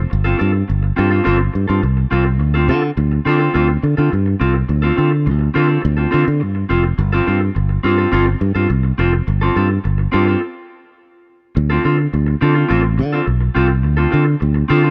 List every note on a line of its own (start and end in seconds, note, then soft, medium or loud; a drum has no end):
0.10 0.33 G1 loud
0.10 muted clean electric guitar stroke soft
0.24 0.37 C4 medium
0.24 0.37 F4 medium
0.24 0.38 A4 medium
0.38 0.62 G2 loud
0.38 0.51 C4 medium
0.38 0.51 F4 medium
0.38 0.52 A4 medium
0.53 muted clean electric guitar stroke soft
0.68 0.90 G1 medium
0.68 muted clean electric guitar stroke soft
0.83 muted clean electric guitar stroke soft
0.96 1.19 G2 loud
0.96 1.11 C4 medium
0.96 1.10 F4 medium
0.96 1.09 A4 medium
1.11 1.23 C4 soft
1.11 1.24 F4 medium
1.11 1.23 A4 medium
1.24 1.48 G1 loud
1.24 1.41 C4 medium
1.24 1.39 F4 loud
1.24 1.37 A4 loud
1.38 muted clean electric guitar stroke soft
1.53 1.65 G2 medium
1.53 muted clean electric guitar stroke soft
1.68 1.80 G2 loud
1.68 1.81 C4 medium
1.68 1.81 F4 soft
1.68 1.80 A4 medium
1.82 2.04 C2 medium
1.82 muted clean electric guitar stroke soft
1.97 muted clean electric guitar stroke soft
2.11 2.40 C2 medium
2.11 2.27 C4 medium
2.11 2.25 F4 medium
2.11 2.24 A4 medium
2.25 muted clean electric guitar stroke soft
2.39 2.70 D2 medium
2.39 muted clean electric guitar stroke soft
2.54 2.67 C4 medium
2.54 2.68 F4 medium
2.54 2.68 A4 medium
2.68 2.90 D3 loud
2.68 2.81 C4 medium
2.68 2.81 F4 medium
2.68 2.82 A4 medium
2.83 muted clean electric guitar stroke soft
2.97 3.19 D2 loud
2.97 muted clean electric guitar stroke soft
3.12 muted clean electric guitar stroke soft
3.25 3.47 D3 medium
3.25 3.40 C4 medium
3.25 3.39 F4 medium
3.25 3.38 A4 loud
3.39 3.53 C4 soft
3.39 3.53 F4 medium
3.39 3.52 A4 medium
3.54 3.76 D2 medium
3.54 3.70 C4 medium
3.54 3.69 F4 medium
3.54 3.68 A4 medium
3.69 muted clean electric guitar stroke soft
3.83 3.94 D3 medium
3.83 muted clean electric guitar stroke soft
3.97 4.09 D3 loud
3.97 4.10 C4 medium
3.97 4.10 F4 medium
3.97 4.10 A4 medium
4.12 4.34 G2 medium
4.12 muted clean electric guitar stroke soft
4.26 muted clean electric guitar stroke soft
4.40 4.62 C2 medium
4.40 4.56 C4 medium
4.40 4.54 F4 medium
4.40 4.53 A4 medium
4.54 muted clean electric guitar stroke soft
4.69 4.90 D2 loud
4.69 muted clean electric guitar stroke soft
4.82 4.95 C4 medium
4.82 4.96 F4 medium
4.82 4.97 A4 medium
4.97 5.28 D3 medium
4.97 5.09 C4 medium
4.97 5.10 F4 medium
4.97 5.10 A4 medium
5.12 muted clean electric guitar stroke soft
5.26 5.48 D2 medium
5.26 muted clean electric guitar stroke soft
5.39 muted clean electric guitar stroke soft
5.54 5.77 D3 medium
5.54 5.68 C4 medium
5.54 5.67 F4 loud
5.54 5.66 A4 loud
5.68 5.80 C4 medium
5.68 5.80 F4 medium
5.68 5.81 A4 medium
5.82 6.06 D2 loud
5.82 muted clean electric guitar stroke soft
5.97 6.10 C4 soft
5.97 6.10 F4 soft
5.97 6.10 A4 medium
6.11 6.24 D3 loud
6.11 6.27 C4 medium
6.11 6.25 F4 medium
6.11 6.24 A4 medium
6.25 6.43 D3 loud
6.25 muted clean electric guitar stroke medium
6.40 6.63 G2 medium
6.40 muted clean electric guitar stroke soft
6.55 muted clean electric guitar stroke soft
6.69 6.91 F1 medium
6.69 6.85 C4 medium
6.69 6.84 F4 medium
6.69 6.83 A4 medium
6.84 muted clean electric guitar stroke medium
6.98 7.20 G1 loud
6.98 muted clean electric guitar stroke soft
7.12 7.25 C4 medium
7.12 7.26 F4 medium
7.12 7.27 A4 medium
7.27 7.49 G2 medium
7.27 7.39 C4 medium
7.27 7.39 F4 medium
7.27 7.40 A4 medium
7.41 muted clean electric guitar stroke soft
7.55 7.77 G1 medium
7.55 muted clean electric guitar stroke soft
7.69 muted clean electric guitar stroke soft
7.83 8.05 G2 medium
7.83 7.99 C4 medium
7.83 7.97 F4 loud
7.83 7.97 A4 loud
7.98 8.10 C4 soft
7.98 8.11 F4 medium
7.98 8.10 A4 medium
8.12 8.34 G1 loud
8.12 8.28 C4 medium
8.12 8.26 F4 loud
8.12 8.25 A4 medium
8.26 muted clean electric guitar stroke soft
8.40 8.52 G2 loud
8.40 muted clean electric guitar stroke soft
8.55 8.66 G2 loud
8.55 8.68 C4 medium
8.55 8.68 F4 medium
8.55 8.67 A4 medium
8.69 8.91 C2 medium
8.69 muted clean electric guitar stroke soft
8.83 muted clean electric guitar stroke soft
8.98 9.20 F1 medium
8.98 9.14 C4 medium
8.98 9.13 F4 medium
8.98 9.12 A4 medium
9.13 muted clean electric guitar stroke soft
9.27 9.49 G1 loud
9.27 muted clean electric guitar stroke soft
9.41 9.54 C4 medium
9.41 9.55 F4 medium
9.41 9.56 A4 medium
9.55 9.77 G2 loud
9.55 9.68 C4 medium
9.55 9.68 F4 medium
9.55 9.69 A4 medium
9.70 muted clean electric guitar stroke soft
9.84 10.06 G1 medium
9.84 muted clean electric guitar stroke soft
9.98 muted clean electric guitar stroke soft
10.12 10.35 G2 medium
10.12 10.28 C4 medium
10.12 10.27 F4 loud
10.12 10.26 A4 medium
10.27 10.40 C4 soft
10.27 10.40 F4 medium
10.27 10.39 A4 medium
11.55 11.77 D2 loud
11.55 muted clean electric guitar stroke soft
11.70 11.83 C4 medium
11.70 11.84 F4 medium
11.70 11.85 A4 medium
11.84 12.06 D3 medium
11.84 11.96 C4 medium
11.84 11.97 F4 medium
11.84 11.97 A4 medium
11.98 muted clean electric guitar stroke soft
12.13 12.34 D2 loud
12.13 muted clean electric guitar stroke soft
12.26 muted clean electric guitar stroke medium
12.41 12.63 D3 loud
12.41 12.55 C4 medium
12.41 12.54 F4 medium
12.41 12.54 A4 medium
12.55 12.67 C4 soft
12.55 12.68 F4 medium
12.55 12.67 A4 medium
12.69 13.00 A1 medium
12.69 12.85 C4 medium
12.69 12.83 F4 medium
12.69 12.82 A4 loud
12.83 muted clean electric guitar stroke soft
12.98 13.20 D3 loud
12.98 muted clean electric guitar stroke soft
13.13 13.25 C4 medium
13.13 13.25 F4 medium
13.13 13.25 A4 medium
13.26 13.48 B1 medium
13.26 muted clean electric guitar stroke soft
13.41 muted clean electric guitar stroke soft
13.55 13.85 C2 medium
13.55 13.70 C4 medium
13.55 13.69 F4 medium
13.55 13.67 A4 medium
13.69 muted clean electric guitar stroke medium
13.83 14.06 D2 loud
13.83 muted clean electric guitar stroke soft
13.97 14.09 C4 medium
13.97 14.10 F4 medium
13.97 14.11 A4 medium
14.10 14.34 D3 loud
14.10 14.24 C4 medium
14.10 14.24 F4 medium
14.10 14.24 A4 medium
14.25 muted clean electric guitar stroke soft
14.40 14.63 D2 medium
14.40 muted clean electric guitar stroke medium
14.54 muted clean electric guitar stroke medium
14.68 14.90 D3 medium
14.68 14.83 C4 medium
14.68 14.82 F4 loud
14.68 14.81 A4 loud
14.83 14.90 C4 soft
14.83 14.90 F4 medium
14.83 14.90 A4 medium